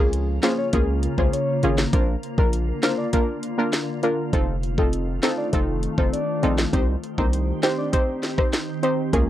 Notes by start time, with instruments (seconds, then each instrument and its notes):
Already playing: 808-style bass C#2, ambient pad C#3 A#3 F4
0.00 synth stab A#3 C#4 F4 G#4
0.13 closed hi-hat
0.43 synth stab A#3 C#4 F4 G#4, soft synth lead C5, snare, closed hi-hat
0.58 soft synth lead C#5
0.73 808-style bass C#2, synth stab A#3 C#4 F4 G#4, soft synth lead A#4, kick, closed hi-hat
1.03 closed hi-hat
1.18 808-style bass C#2, synth stab A#3 C#4 F4 G#4, soft synth lead C5, kick
1.33 soft synth lead C#5, closed hi-hat
1.63 808-style bass G#1, synth stab A#3 C#4 F4 G#4, closed hi-hat
1.78 snare
1.93 808-style bass A#1, ambient pad D3 F4, synth stab A#3 D4 F4 A#4, soft synth lead C5, kick, closed hi-hat
2.23 closed hi-hat
2.38 808-style bass A#1, synth stab A#3 D4 F4 A#4, soft synth lead A#4, kick
2.53 closed hi-hat
2.83 synth stab A#3 D4 F4 A#4, soft synth lead C5, snare, closed hi-hat
2.98 soft synth lead D5
3.13 synth stab A#3 D4 F4 A#4, soft synth lead A#4, kick, closed hi-hat
3.43 closed hi-hat
3.58 synth stab A#3 D4 F4 A#4, soft synth lead A#4
3.73 snare, closed hi-hat
4.03 synth stab A#3 D4 F4 A#4, closed hi-hat
4.33 808-style bass F1, ambient pad D#3 A3, synth stab C4 D#4 F4 A4, soft synth lead C5, kick, closed hi-hat
4.63 closed hi-hat
4.78 synth stab C4 D#4 F4 A4, soft synth lead A4, kick
4.93 closed hi-hat
5.23 synth stab C4 D#4 F4 A4, soft synth lead C5, snare, closed hi-hat
5.38 soft synth lead D5
5.53 808-style bass F1, synth stab C4 D#4 F4 A4, soft synth lead A4, kick, closed hi-hat
5.83 closed hi-hat
5.98 808-style bass F1, synth stab C4 D#4 F4 A4, soft synth lead C5, kick
6.13 soft synth lead D5, closed hi-hat
6.43 808-style bass A#1, synth stab C4 D#4 F4 A4, closed hi-hat
6.58 snare
6.73 808-style bass C2, ambient pad D#3 C4 G4, synth stab C4 D#4 G4 C5, soft synth lead C5, kick, closed hi-hat
7.03 closed hi-hat
7.18 808-style bass C2, synth stab C4 D#4 G4 C5, soft synth lead A#4, kick
7.33 closed hi-hat
7.63 synth stab C4 D#4 G4 C5, soft synth lead C5, snare, closed hi-hat
7.78 soft synth lead D5
7.92 synth stab C4 D#4 G4 C5, soft synth lead C5, kick, closed hi-hat
8.23 snare, closed hi-hat
8.38 synth stab C4 D#4 G4 C5, soft synth lead C5, kick, cross-stick
8.53 snare, closed hi-hat
8.83 synth stab C4 D#4 G4 C5, closed hi-hat
9.13 808-style bass C#2, synth stab A#3 C#4 F4 G#4, soft synth lead A#4, kick, closed hi-hat